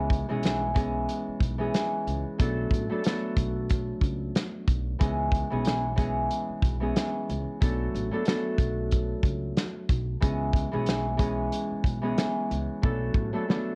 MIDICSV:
0, 0, Header, 1, 5, 480
1, 0, Start_track
1, 0, Tempo, 652174
1, 1764, Time_signature, 4, 2, 24, 8
1, 10120, End_track
2, 0, Start_track
2, 0, Title_t, "Harp"
2, 0, Program_c, 0, 46
2, 0, Note_on_c, 0, 52, 93
2, 0, Note_on_c, 0, 56, 90
2, 0, Note_on_c, 0, 59, 82
2, 0, Note_on_c, 0, 61, 77
2, 0, Note_on_c, 0, 68, 93
2, 185, Note_off_c, 0, 59, 0
2, 187, Note_off_c, 0, 61, 0
2, 190, Note_off_c, 0, 68, 0
2, 201, Note_off_c, 0, 52, 0
2, 206, Note_off_c, 0, 56, 0
2, 210, Note_on_c, 0, 52, 97
2, 215, Note_on_c, 0, 56, 81
2, 220, Note_on_c, 0, 59, 84
2, 225, Note_on_c, 0, 61, 89
2, 230, Note_on_c, 0, 68, 110
2, 438, Note_off_c, 0, 59, 0
2, 440, Note_off_c, 0, 61, 0
2, 442, Note_off_c, 0, 68, 0
2, 536, Note_off_c, 0, 52, 0
2, 541, Note_off_c, 0, 56, 0
2, 545, Note_on_c, 0, 52, 96
2, 550, Note_on_c, 0, 56, 85
2, 554, Note_on_c, 0, 59, 85
2, 559, Note_on_c, 0, 61, 82
2, 564, Note_on_c, 0, 68, 103
2, 1005, Note_off_c, 0, 59, 0
2, 1008, Note_off_c, 0, 61, 0
2, 1010, Note_off_c, 0, 68, 0
2, 1156, Note_off_c, 0, 52, 0
2, 1161, Note_off_c, 0, 56, 0
2, 1164, Note_on_c, 0, 52, 97
2, 1170, Note_on_c, 0, 56, 75
2, 1174, Note_on_c, 0, 59, 92
2, 1179, Note_on_c, 0, 61, 87
2, 1184, Note_on_c, 0, 68, 102
2, 1755, Note_on_c, 0, 54, 88
2, 1761, Note_on_c, 0, 57, 83
2, 1762, Note_off_c, 0, 59, 0
2, 1765, Note_on_c, 0, 59, 84
2, 1770, Note_on_c, 0, 62, 81
2, 1775, Note_on_c, 0, 69, 102
2, 1801, Note_off_c, 0, 52, 0
2, 1801, Note_off_c, 0, 56, 0
2, 1805, Note_off_c, 0, 68, 0
2, 1814, Note_off_c, 0, 61, 0
2, 2104, Note_off_c, 0, 57, 0
2, 2106, Note_off_c, 0, 59, 0
2, 2108, Note_off_c, 0, 62, 0
2, 2111, Note_off_c, 0, 69, 0
2, 2121, Note_off_c, 0, 54, 0
2, 2130, Note_on_c, 0, 54, 96
2, 2135, Note_on_c, 0, 57, 84
2, 2139, Note_on_c, 0, 59, 78
2, 2144, Note_on_c, 0, 62, 85
2, 2149, Note_on_c, 0, 69, 101
2, 2232, Note_off_c, 0, 54, 0
2, 2237, Note_off_c, 0, 57, 0
2, 2241, Note_on_c, 0, 54, 88
2, 2242, Note_off_c, 0, 59, 0
2, 2246, Note_off_c, 0, 62, 0
2, 2246, Note_on_c, 0, 57, 79
2, 2251, Note_on_c, 0, 59, 89
2, 2252, Note_off_c, 0, 69, 0
2, 2255, Note_on_c, 0, 62, 80
2, 2261, Note_on_c, 0, 69, 98
2, 3671, Note_on_c, 0, 52, 91
2, 3676, Note_on_c, 0, 56, 87
2, 3678, Note_off_c, 0, 59, 0
2, 3681, Note_on_c, 0, 59, 83
2, 3685, Note_on_c, 0, 61, 81
2, 3690, Note_on_c, 0, 68, 90
2, 3720, Note_off_c, 0, 57, 0
2, 3720, Note_off_c, 0, 69, 0
2, 3721, Note_off_c, 0, 54, 0
2, 3729, Note_off_c, 0, 62, 0
2, 4024, Note_off_c, 0, 59, 0
2, 4026, Note_off_c, 0, 61, 0
2, 4028, Note_off_c, 0, 68, 0
2, 4040, Note_off_c, 0, 52, 0
2, 4044, Note_off_c, 0, 56, 0
2, 4049, Note_on_c, 0, 52, 91
2, 4053, Note_on_c, 0, 56, 75
2, 4059, Note_on_c, 0, 59, 84
2, 4063, Note_on_c, 0, 61, 89
2, 4068, Note_on_c, 0, 68, 105
2, 4277, Note_off_c, 0, 59, 0
2, 4279, Note_off_c, 0, 61, 0
2, 4282, Note_off_c, 0, 68, 0
2, 4374, Note_off_c, 0, 52, 0
2, 4379, Note_off_c, 0, 56, 0
2, 4383, Note_on_c, 0, 52, 100
2, 4388, Note_on_c, 0, 56, 81
2, 4392, Note_on_c, 0, 59, 85
2, 4398, Note_on_c, 0, 61, 80
2, 4403, Note_on_c, 0, 68, 105
2, 4844, Note_off_c, 0, 59, 0
2, 4847, Note_off_c, 0, 61, 0
2, 4849, Note_off_c, 0, 68, 0
2, 4995, Note_off_c, 0, 52, 0
2, 5000, Note_off_c, 0, 56, 0
2, 5004, Note_on_c, 0, 52, 90
2, 5009, Note_on_c, 0, 56, 75
2, 5014, Note_on_c, 0, 59, 89
2, 5018, Note_on_c, 0, 61, 84
2, 5023, Note_on_c, 0, 68, 97
2, 5596, Note_on_c, 0, 54, 87
2, 5601, Note_on_c, 0, 57, 82
2, 5603, Note_off_c, 0, 59, 0
2, 5606, Note_on_c, 0, 59, 87
2, 5611, Note_on_c, 0, 62, 79
2, 5615, Note_on_c, 0, 69, 98
2, 5641, Note_off_c, 0, 52, 0
2, 5641, Note_off_c, 0, 56, 0
2, 5645, Note_off_c, 0, 68, 0
2, 5655, Note_off_c, 0, 61, 0
2, 5944, Note_off_c, 0, 57, 0
2, 5946, Note_off_c, 0, 59, 0
2, 5949, Note_off_c, 0, 62, 0
2, 5951, Note_off_c, 0, 69, 0
2, 5962, Note_off_c, 0, 54, 0
2, 5971, Note_on_c, 0, 54, 94
2, 5976, Note_on_c, 0, 57, 88
2, 5981, Note_on_c, 0, 59, 80
2, 5985, Note_on_c, 0, 62, 85
2, 5990, Note_on_c, 0, 69, 99
2, 6075, Note_off_c, 0, 54, 0
2, 6079, Note_off_c, 0, 57, 0
2, 6083, Note_on_c, 0, 54, 88
2, 6084, Note_off_c, 0, 59, 0
2, 6088, Note_on_c, 0, 57, 82
2, 6089, Note_off_c, 0, 62, 0
2, 6093, Note_off_c, 0, 69, 0
2, 6093, Note_on_c, 0, 59, 85
2, 6098, Note_on_c, 0, 62, 80
2, 6102, Note_on_c, 0, 69, 101
2, 7511, Note_on_c, 0, 52, 91
2, 7516, Note_on_c, 0, 56, 87
2, 7518, Note_off_c, 0, 59, 0
2, 7520, Note_on_c, 0, 59, 83
2, 7526, Note_on_c, 0, 61, 81
2, 7530, Note_on_c, 0, 68, 96
2, 7560, Note_off_c, 0, 57, 0
2, 7560, Note_off_c, 0, 69, 0
2, 7561, Note_off_c, 0, 54, 0
2, 7570, Note_off_c, 0, 62, 0
2, 7864, Note_off_c, 0, 59, 0
2, 7866, Note_off_c, 0, 61, 0
2, 7869, Note_off_c, 0, 68, 0
2, 7879, Note_off_c, 0, 52, 0
2, 7884, Note_off_c, 0, 56, 0
2, 7887, Note_on_c, 0, 52, 94
2, 7893, Note_on_c, 0, 56, 79
2, 7898, Note_on_c, 0, 59, 84
2, 7902, Note_on_c, 0, 61, 92
2, 7907, Note_on_c, 0, 68, 106
2, 8116, Note_off_c, 0, 59, 0
2, 8119, Note_off_c, 0, 61, 0
2, 8121, Note_off_c, 0, 68, 0
2, 8214, Note_off_c, 0, 52, 0
2, 8219, Note_off_c, 0, 56, 0
2, 8222, Note_on_c, 0, 52, 98
2, 8228, Note_on_c, 0, 56, 85
2, 8233, Note_on_c, 0, 59, 83
2, 8237, Note_on_c, 0, 61, 85
2, 8242, Note_on_c, 0, 68, 103
2, 8684, Note_off_c, 0, 59, 0
2, 8687, Note_off_c, 0, 61, 0
2, 8689, Note_off_c, 0, 68, 0
2, 8835, Note_off_c, 0, 52, 0
2, 8840, Note_off_c, 0, 56, 0
2, 8844, Note_on_c, 0, 52, 96
2, 8849, Note_on_c, 0, 56, 77
2, 8854, Note_on_c, 0, 59, 91
2, 8858, Note_on_c, 0, 61, 86
2, 8864, Note_on_c, 0, 68, 105
2, 9436, Note_on_c, 0, 54, 88
2, 9441, Note_on_c, 0, 57, 81
2, 9443, Note_off_c, 0, 59, 0
2, 9446, Note_on_c, 0, 59, 87
2, 9450, Note_on_c, 0, 62, 80
2, 9455, Note_on_c, 0, 69, 102
2, 9481, Note_off_c, 0, 52, 0
2, 9481, Note_off_c, 0, 56, 0
2, 9485, Note_off_c, 0, 68, 0
2, 9494, Note_off_c, 0, 61, 0
2, 9784, Note_off_c, 0, 57, 0
2, 9786, Note_off_c, 0, 59, 0
2, 9789, Note_off_c, 0, 62, 0
2, 9791, Note_off_c, 0, 69, 0
2, 9801, Note_off_c, 0, 54, 0
2, 9810, Note_on_c, 0, 54, 96
2, 9814, Note_on_c, 0, 57, 90
2, 9820, Note_on_c, 0, 59, 78
2, 9824, Note_on_c, 0, 62, 85
2, 9829, Note_on_c, 0, 69, 103
2, 9913, Note_off_c, 0, 54, 0
2, 9917, Note_off_c, 0, 57, 0
2, 9922, Note_on_c, 0, 54, 87
2, 9923, Note_off_c, 0, 59, 0
2, 9926, Note_on_c, 0, 57, 81
2, 9927, Note_off_c, 0, 62, 0
2, 9931, Note_on_c, 0, 59, 85
2, 9932, Note_off_c, 0, 69, 0
2, 9936, Note_on_c, 0, 62, 84
2, 9941, Note_on_c, 0, 69, 101
2, 10120, Note_off_c, 0, 54, 0
2, 10120, Note_off_c, 0, 57, 0
2, 10120, Note_off_c, 0, 59, 0
2, 10120, Note_off_c, 0, 62, 0
2, 10120, Note_off_c, 0, 69, 0
2, 10120, End_track
3, 0, Start_track
3, 0, Title_t, "Upright bass"
3, 0, Program_c, 1, 32
3, 0, Note_on_c, 1, 37, 105
3, 149, Note_off_c, 1, 37, 0
3, 219, Note_on_c, 1, 35, 97
3, 776, Note_off_c, 1, 35, 0
3, 1035, Note_on_c, 1, 35, 77
3, 1234, Note_off_c, 1, 35, 0
3, 1524, Note_on_c, 1, 37, 91
3, 1633, Note_off_c, 1, 37, 0
3, 1766, Note_on_c, 1, 35, 110
3, 1960, Note_off_c, 1, 35, 0
3, 1993, Note_on_c, 1, 33, 97
3, 2106, Note_off_c, 1, 33, 0
3, 2479, Note_on_c, 1, 35, 91
3, 2871, Note_off_c, 1, 35, 0
3, 2955, Note_on_c, 1, 37, 90
3, 3154, Note_off_c, 1, 37, 0
3, 3441, Note_on_c, 1, 35, 89
3, 3637, Note_off_c, 1, 35, 0
3, 3686, Note_on_c, 1, 37, 104
3, 3989, Note_off_c, 1, 37, 0
3, 4058, Note_on_c, 1, 35, 93
3, 4616, Note_off_c, 1, 35, 0
3, 4875, Note_on_c, 1, 35, 77
3, 5074, Note_off_c, 1, 35, 0
3, 5368, Note_on_c, 1, 37, 89
3, 5475, Note_off_c, 1, 37, 0
3, 5606, Note_on_c, 1, 35, 110
3, 5801, Note_off_c, 1, 35, 0
3, 5847, Note_on_c, 1, 33, 100
3, 5954, Note_off_c, 1, 33, 0
3, 6319, Note_on_c, 1, 35, 92
3, 6711, Note_off_c, 1, 35, 0
3, 6795, Note_on_c, 1, 37, 85
3, 6994, Note_off_c, 1, 37, 0
3, 7282, Note_on_c, 1, 35, 92
3, 7478, Note_off_c, 1, 35, 0
3, 7526, Note_on_c, 1, 37, 108
3, 7829, Note_off_c, 1, 37, 0
3, 7899, Note_on_c, 1, 35, 95
3, 8456, Note_off_c, 1, 35, 0
3, 8715, Note_on_c, 1, 35, 80
3, 8914, Note_off_c, 1, 35, 0
3, 9207, Note_on_c, 1, 37, 90
3, 9314, Note_off_c, 1, 37, 0
3, 9447, Note_on_c, 1, 35, 107
3, 9641, Note_off_c, 1, 35, 0
3, 9674, Note_on_c, 1, 33, 100
3, 9787, Note_off_c, 1, 33, 0
3, 10120, End_track
4, 0, Start_track
4, 0, Title_t, "Muted upright bass strokes"
4, 940, Note_on_c, 9, 29, 47
4, 1013, Note_off_c, 9, 29, 0
4, 4780, Note_on_c, 9, 29, 47
4, 4853, Note_off_c, 9, 29, 0
4, 8620, Note_on_c, 9, 29, 48
4, 8693, Note_off_c, 9, 29, 0
4, 10120, End_track
5, 0, Start_track
5, 0, Title_t, "Drums"
5, 73, Note_on_c, 9, 36, 94
5, 93, Note_on_c, 9, 42, 71
5, 147, Note_off_c, 9, 36, 0
5, 167, Note_off_c, 9, 42, 0
5, 315, Note_on_c, 9, 42, 89
5, 334, Note_on_c, 9, 38, 111
5, 388, Note_off_c, 9, 42, 0
5, 408, Note_off_c, 9, 38, 0
5, 558, Note_on_c, 9, 36, 100
5, 566, Note_on_c, 9, 42, 82
5, 632, Note_off_c, 9, 36, 0
5, 639, Note_off_c, 9, 42, 0
5, 801, Note_on_c, 9, 42, 92
5, 875, Note_off_c, 9, 42, 0
5, 1035, Note_on_c, 9, 36, 92
5, 1050, Note_on_c, 9, 42, 74
5, 1108, Note_off_c, 9, 36, 0
5, 1123, Note_off_c, 9, 42, 0
5, 1283, Note_on_c, 9, 42, 86
5, 1287, Note_on_c, 9, 38, 116
5, 1357, Note_off_c, 9, 42, 0
5, 1361, Note_off_c, 9, 38, 0
5, 1529, Note_on_c, 9, 42, 73
5, 1602, Note_off_c, 9, 42, 0
5, 1765, Note_on_c, 9, 36, 109
5, 1770, Note_on_c, 9, 42, 90
5, 1839, Note_off_c, 9, 36, 0
5, 1843, Note_off_c, 9, 42, 0
5, 1993, Note_on_c, 9, 36, 94
5, 2014, Note_on_c, 9, 42, 70
5, 2067, Note_off_c, 9, 36, 0
5, 2087, Note_off_c, 9, 42, 0
5, 2236, Note_on_c, 9, 42, 93
5, 2256, Note_on_c, 9, 38, 110
5, 2310, Note_off_c, 9, 42, 0
5, 2329, Note_off_c, 9, 38, 0
5, 2478, Note_on_c, 9, 36, 101
5, 2486, Note_on_c, 9, 42, 80
5, 2551, Note_off_c, 9, 36, 0
5, 2560, Note_off_c, 9, 42, 0
5, 2720, Note_on_c, 9, 42, 92
5, 2728, Note_on_c, 9, 36, 93
5, 2794, Note_off_c, 9, 42, 0
5, 2802, Note_off_c, 9, 36, 0
5, 2955, Note_on_c, 9, 36, 90
5, 2970, Note_on_c, 9, 42, 71
5, 3028, Note_off_c, 9, 36, 0
5, 3044, Note_off_c, 9, 42, 0
5, 3204, Note_on_c, 9, 42, 87
5, 3208, Note_on_c, 9, 38, 113
5, 3277, Note_off_c, 9, 42, 0
5, 3281, Note_off_c, 9, 38, 0
5, 3441, Note_on_c, 9, 36, 100
5, 3448, Note_on_c, 9, 42, 75
5, 3514, Note_off_c, 9, 36, 0
5, 3522, Note_off_c, 9, 42, 0
5, 3685, Note_on_c, 9, 36, 111
5, 3689, Note_on_c, 9, 42, 92
5, 3759, Note_off_c, 9, 36, 0
5, 3763, Note_off_c, 9, 42, 0
5, 3913, Note_on_c, 9, 36, 94
5, 3933, Note_on_c, 9, 42, 71
5, 3986, Note_off_c, 9, 36, 0
5, 4007, Note_off_c, 9, 42, 0
5, 4155, Note_on_c, 9, 42, 92
5, 4175, Note_on_c, 9, 38, 112
5, 4229, Note_off_c, 9, 42, 0
5, 4248, Note_off_c, 9, 38, 0
5, 4398, Note_on_c, 9, 36, 97
5, 4407, Note_on_c, 9, 42, 81
5, 4472, Note_off_c, 9, 36, 0
5, 4480, Note_off_c, 9, 42, 0
5, 4642, Note_on_c, 9, 42, 91
5, 4715, Note_off_c, 9, 42, 0
5, 4875, Note_on_c, 9, 36, 95
5, 4891, Note_on_c, 9, 42, 71
5, 4949, Note_off_c, 9, 36, 0
5, 4964, Note_off_c, 9, 42, 0
5, 5124, Note_on_c, 9, 42, 86
5, 5128, Note_on_c, 9, 38, 113
5, 5197, Note_off_c, 9, 42, 0
5, 5201, Note_off_c, 9, 38, 0
5, 5369, Note_on_c, 9, 42, 75
5, 5443, Note_off_c, 9, 42, 0
5, 5606, Note_on_c, 9, 36, 110
5, 5610, Note_on_c, 9, 42, 91
5, 5680, Note_off_c, 9, 36, 0
5, 5683, Note_off_c, 9, 42, 0
5, 5854, Note_on_c, 9, 42, 72
5, 5928, Note_off_c, 9, 42, 0
5, 6076, Note_on_c, 9, 42, 90
5, 6095, Note_on_c, 9, 38, 110
5, 6149, Note_off_c, 9, 42, 0
5, 6168, Note_off_c, 9, 38, 0
5, 6318, Note_on_c, 9, 36, 97
5, 6327, Note_on_c, 9, 42, 82
5, 6392, Note_off_c, 9, 36, 0
5, 6400, Note_off_c, 9, 42, 0
5, 6561, Note_on_c, 9, 42, 89
5, 6569, Note_on_c, 9, 36, 89
5, 6635, Note_off_c, 9, 42, 0
5, 6643, Note_off_c, 9, 36, 0
5, 6795, Note_on_c, 9, 36, 92
5, 6809, Note_on_c, 9, 42, 74
5, 6868, Note_off_c, 9, 36, 0
5, 6883, Note_off_c, 9, 42, 0
5, 7042, Note_on_c, 9, 42, 85
5, 7046, Note_on_c, 9, 38, 118
5, 7116, Note_off_c, 9, 42, 0
5, 7120, Note_off_c, 9, 38, 0
5, 7281, Note_on_c, 9, 36, 102
5, 7288, Note_on_c, 9, 42, 74
5, 7354, Note_off_c, 9, 36, 0
5, 7362, Note_off_c, 9, 42, 0
5, 7525, Note_on_c, 9, 36, 112
5, 7528, Note_on_c, 9, 42, 93
5, 7599, Note_off_c, 9, 36, 0
5, 7602, Note_off_c, 9, 42, 0
5, 7753, Note_on_c, 9, 36, 95
5, 7773, Note_on_c, 9, 42, 74
5, 7826, Note_off_c, 9, 36, 0
5, 7846, Note_off_c, 9, 42, 0
5, 7995, Note_on_c, 9, 42, 91
5, 8014, Note_on_c, 9, 38, 112
5, 8069, Note_off_c, 9, 42, 0
5, 8088, Note_off_c, 9, 38, 0
5, 8238, Note_on_c, 9, 36, 96
5, 8247, Note_on_c, 9, 42, 80
5, 8312, Note_off_c, 9, 36, 0
5, 8320, Note_off_c, 9, 42, 0
5, 8481, Note_on_c, 9, 42, 89
5, 8555, Note_off_c, 9, 42, 0
5, 8715, Note_on_c, 9, 36, 92
5, 8729, Note_on_c, 9, 42, 71
5, 8788, Note_off_c, 9, 36, 0
5, 8803, Note_off_c, 9, 42, 0
5, 8963, Note_on_c, 9, 42, 90
5, 8967, Note_on_c, 9, 38, 116
5, 9037, Note_off_c, 9, 42, 0
5, 9041, Note_off_c, 9, 38, 0
5, 9209, Note_on_c, 9, 42, 74
5, 9283, Note_off_c, 9, 42, 0
5, 9446, Note_on_c, 9, 36, 109
5, 9520, Note_off_c, 9, 36, 0
5, 9674, Note_on_c, 9, 36, 93
5, 9747, Note_off_c, 9, 36, 0
5, 9936, Note_on_c, 9, 38, 110
5, 10010, Note_off_c, 9, 38, 0
5, 10120, End_track
0, 0, End_of_file